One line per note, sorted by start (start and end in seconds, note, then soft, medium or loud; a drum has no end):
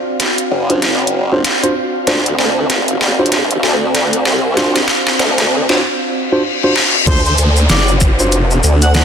0.00 5.82 C4 medium
0.00 5.83 F#4 medium
0.00 5.83 D5 medium
0.00 5.83 F5 medium
0.20 snare medium
0.20 closed hi-hat medium
0.38 closed hi-hat medium
0.51 1.43 F#1 loud
0.70 0.79 D4 medium
0.70 0.79 F4 medium
0.70 0.79 F#4 medium
0.70 0.79 C5 medium
0.70 closed hi-hat soft
0.82 snare medium
0.82 closed hi-hat medium
1.07 closed hi-hat medium
1.32 1.42 D4 medium
1.32 1.42 F4 medium
1.32 1.42 F#4 medium
1.32 1.42 C5 loud
1.45 snare medium
1.45 closed hi-hat medium
1.63 1.73 D4 medium
1.63 1.73 F4 medium
1.63 1.73 F#4 medium
1.63 1.73 C5 loud
1.63 closed hi-hat medium
2.07 2.37 D2 medium
2.07 2.21 D4 loud
2.07 2.21 F4 medium
2.07 2.21 F#4 medium
2.07 2.21 C5 loud
2.07 snare medium
2.07 closed hi-hat medium
2.26 closed hi-hat medium
2.38 2.68 D2 loud
2.38 snare medium
2.70 3.62 F#1 loud
2.70 snare medium
2.70 closed hi-hat medium
2.88 closed hi-hat medium
3.01 snare medium
3.19 3.35 D4 medium
3.19 3.35 F4 medium
3.19 3.35 F#4 medium
3.19 3.35 C5 loud
3.26 closed hi-hat soft
3.32 snare medium
3.32 closed hi-hat medium
3.51 closed hi-hat soft
3.63 4.24 D2 medium
3.63 snare medium
3.95 snare medium
3.95 closed hi-hat medium
4.13 closed hi-hat medium
4.25 4.86 C2 loud
4.25 snare medium
4.57 4.78 D4 loud
4.57 4.78 F4 medium
4.57 4.78 F#4 medium
4.57 4.78 C5 loud
4.57 snare medium
4.57 closed hi-hat medium
4.76 snare medium
4.76 closed hi-hat medium
4.88 snare loud
5.07 snare medium
5.19 5.67 D2 medium
5.19 snare loud
5.19 closed hi-hat medium
5.38 snare medium
5.38 closed hi-hat soft
5.69 5.82 F#1 loud
5.69 5.79 D4 medium
5.69 5.79 F4 medium
5.69 5.79 F#4 medium
5.69 5.79 C5 medium
5.69 snare medium
5.69 closed hi-hat soft
5.82 reverse cymbal medium
6.32 6.42 D4 medium
6.32 6.42 F4 medium
6.32 6.42 F#4 medium
6.32 6.42 C5 loud
6.63 6.73 D4 loud
6.63 6.73 F4 medium
6.63 6.73 F#4 medium
6.63 6.73 C5 loud
6.63 high tom medium
6.76 snare medium
6.95 mid tom medium
7.07 7.37 D2 loud
7.07 9.04 C4 medium
7.07 7.21 D4 loud
7.07 7.21 F4 medium
7.07 7.21 F#4 medium
7.07 7.21 C5 loud
7.07 7.20 C5 medium
7.07 kick loud
7.07 closed hi-hat medium
7.07 crash loud
7.07 downlifter medium
7.07 shaker soft
7.26 7.34 C5 medium
7.26 shaker soft
7.38 7.68 D2 loud
7.38 closed hi-hat medium
7.38 shaker medium
7.53 9.04 F#4 medium
7.53 shaker soft
7.70 8.35 F#1 loud
7.70 7.91 D5 medium
7.70 snare loud
7.70 closed hi-hat medium
7.70 shaker soft
7.88 shaker soft
8.01 kick loud
8.01 shaker medium
8.20 8.36 D4 medium
8.20 8.36 F4 medium
8.20 8.36 F#4 medium
8.20 8.36 C5 loud
8.20 shaker soft
8.30 9.04 D5 medium
8.30 closed hi-hat medium
8.30 shaker soft
8.35 8.61 F1 loud
8.51 shaker soft
8.64 9.04 D2 medium
8.64 shaker medium
8.82 8.90 F#5 medium
8.82 closed hi-hat medium
8.82 shaker soft
8.94 9.04 F#5 medium
8.94 snare loud
8.94 closed hi-hat medium
8.94 shaker soft